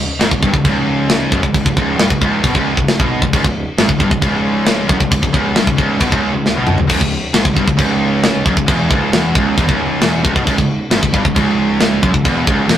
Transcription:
0.19 picked electric bass G#1, distorted electric guitar G#2, snare, china
0.31 picked electric bass C#1, distorted electric guitar C#2, kick
0.43 picked electric bass G1, distorted electric guitar G2, kick
0.53 picked electric bass C#1, distorted electric guitar C#2, kick
0.65 picked electric bass C#1, distorted electric guitar C#2, kick, china
1.09 snare, china
1.32 picked electric bass F#1, distorted electric guitar F#2, kick
1.43 picked electric bass C#1, distorted electric guitar C#2, kick
1.54 picked electric bass C#1, distorted electric guitar C#2, kick, china
1.66 picked electric bass C#1, distorted electric guitar C#2, kick
1.77 picked electric bass C#1, distorted electric guitar C#2, kick
1.99 picked electric bass G1, distorted electric guitar G2, snare, china
2.10 picked electric bass C#1, distorted electric guitar C#2, kick
2.21 picked electric bass C#1, distorted electric guitar C#2, kick
2.44 picked electric bass B1, distorted electric guitar B2, kick, china
2.55 picked electric bass C#1, distorted electric guitar C#2, kick
2.77 picked electric bass C#1, distorted electric guitar C#2, kick
2.88 snare, china
3.00 picked electric bass B1, distorted electric guitar B2, kick
3.22 picked electric bass C#1, distorted electric guitar C#2, kick
3.33 picked electric bass C#1, distorted electric guitar C#2, kick, china
3.44 picked electric bass C#1, distorted electric guitar C#2, kick
3.78 picked electric bass G#1, distorted electric guitar G#2, snare, china
3.89 picked electric bass C#1, distorted electric guitar C#2, kick
3.99 picked electric bass G1, distorted electric guitar G2, kick
4.10 picked electric bass C#1, distorted electric guitar C#2, kick
4.21 picked electric bass C#1, distorted electric guitar C#2, kick, china
4.66 snare, china
4.88 picked electric bass F#1, distorted electric guitar F#2, kick
5.00 picked electric bass C#1, distorted electric guitar C#2, kick
5.11 picked electric bass C#1, distorted electric guitar C#2, kick, china
5.23 picked electric bass C#1, distorted electric guitar C#2, kick
5.33 picked electric bass C#1, distorted electric guitar C#2, kick
5.55 picked electric bass G1, distorted electric guitar G2, snare, china
5.67 picked electric bass C#1, distorted electric guitar C#2, kick
5.77 picked electric bass C#1, distorted electric guitar C#2, kick
5.98 picked electric bass B1, distorted electric guitar B2, kick, china
6.03 distorted electric guitar B2
6.10 picked electric bass C#1, distorted electric guitar C#2, kick
6.14 distorted electric guitar C#2
6.33 picked electric bass C#1, distorted electric guitar C#2
6.46 snare
6.55 picked electric bass B1, distorted electric guitar B2
6.67 mid tom
6.77 picked electric bass C#1, distorted electric guitar C#2, floor tom
6.87 picked electric bass C#1, distorted electric guitar C#2, kick, china, crash
7.01 picked electric bass C#1, distorted electric guitar C#2, kick
7.34 picked electric bass G#1, distorted electric guitar G#2, snare, china
7.45 picked electric bass C#1, distorted electric guitar C#2, kick
7.56 picked electric bass G1, distorted electric guitar G2, kick
7.67 picked electric bass C#1, distorted electric guitar C#2, kick
7.77 picked electric bass C#1, distorted electric guitar C#2, kick, china
8.23 snare, china
8.45 picked electric bass F#1, distorted electric guitar F#2, kick
8.56 picked electric bass C#1, distorted electric guitar C#2, kick
8.66 picked electric bass E1, distorted electric guitar E2, kick, china
8.90 picked electric bass C#1, distorted electric guitar C#2, kick
9.12 picked electric bass E1, distorted electric guitar E2, snare, china
9.35 picked electric bass C#1, distorted electric guitar C#2, kick
9.57 picked electric bass E1, distorted electric guitar E2, kick, china
9.67 picked electric bass C#1, distorted electric guitar C#2, kick
10.01 picked electric bass E1, distorted electric guitar E2, snare, china
10.23 picked electric bass C#1, distorted electric guitar C#2, kick
10.35 picked electric bass B1, distorted electric guitar B2, kick
10.46 picked electric bass C#1, distorted electric guitar C#2, kick, china
10.56 picked electric bass C#1, distorted electric guitar C#2, kick
10.90 picked electric bass G#1, distorted electric guitar G#2, snare, china
11.01 picked electric bass C#1, distorted electric guitar C#2, kick
11.13 picked electric bass G1, distorted electric guitar G2, kick
11.24 picked electric bass C#1, distorted electric guitar C#2, kick
11.35 picked electric bass C#1, distorted electric guitar C#2, kick, china
11.80 snare, china
12.02 picked electric bass F#1, distorted electric guitar F#2, kick
12.14 picked electric bass C#1, distorted electric guitar C#2, kick
12.25 picked electric bass E1, distorted electric guitar E2, kick, china
12.47 picked electric bass C#1, distorted electric guitar C#2, kick
12.68 picked electric bass E1, distorted electric guitar E2, snare, china

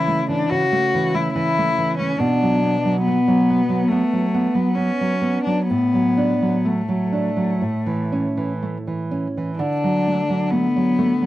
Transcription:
Already playing: nylon-string guitar C#3 E3, cello E4
0.08 nylon-string guitar A3
0.29 nylon-string guitar E3, cello D4
0.50 nylon-string guitar C#3, cello F#4
0.72 nylon-string guitar A3
0.94 nylon-string guitar E3
1.14 nylon-string guitar A3, cello E4
1.34 nylon-string guitar E3, cello E4
1.58 nylon-string guitar A3
1.78 nylon-string guitar E3
1.99 nylon-string guitar A3, cello C#4
2.19 nylon-string guitar B2, cello D4
2.42 nylon-string guitar F#3
2.64 nylon-string guitar B3
2.85 nylon-string guitar F#3
3.02 cello B3
3.07 nylon-string guitar B3
3.28 nylon-string guitar F#3
3.50 nylon-string guitar B3
3.69 nylon-string guitar F#3
3.88 cello A3, nylon-string guitar B3
4.13 nylon-string guitar F#3
4.34 nylon-string guitar B3
4.54 nylon-string guitar F#3, cello B3
4.75 nylon-string guitar B3, cello C#4
5.01 nylon-string guitar F#3
5.22 nylon-string guitar B3
5.44 nylon-string guitar F#3, cello D4
5.68 nylon-string guitar A2, cello B3
5.94 nylon-string guitar F#3
6.17 nylon-string guitar D4
6.42 nylon-string guitar F#3
6.65 nylon-string guitar A3, cello A3
6.89 nylon-string guitar F#3
7.13 nylon-string guitar D4
7.37 nylon-string guitar F#3
7.62 nylon-string guitar A2
7.87 nylon-string guitar E3
8.12 nylon-string guitar C#4
8.37 nylon-string guitar E3
8.62 nylon-string guitar A3
8.87 nylon-string guitar E3
9.11 nylon-string guitar C#4
9.37 nylon-string guitar E3
9.58 nylon-string guitar D3, cello D4
9.84 nylon-string guitar F#3
10.07 nylon-string guitar A3
10.29 nylon-string guitar F#3
10.51 nylon-string guitar A3, cello B3
10.76 nylon-string guitar F#3
10.99 nylon-string guitar A3
11.22 nylon-string guitar F#3

